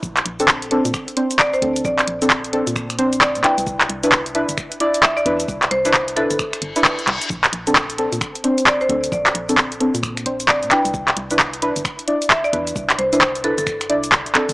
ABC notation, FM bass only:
X:1
M:4/4
L:1/16
Q:"Swing 16ths" 1/4=132
K:Bb
V:1 name="FM bass" clef=bass
B,,,2 B,,,4- B,,, B,, z6 D,,2 | B,,,2 B,,,4- B,,, B,,3 B,,,3 B,, z C,, | C,,2 C,,4- C,, G,,, z6 =E,,2 | C,,2 C,,4- C,, G,,, z2 G,,, z3 C,, z |
B,,,2 B,,,4- B,,, B,, z6 D,,2 | B,,,2 B,,,4- B,,, B,,3 B,,,3 B,, z C,, | C,,2 C,,4- C,, G,,, z6 =E,,2 | C,,2 C,,4- C,, G,,,3 C,,3 G,,, z G,,, |]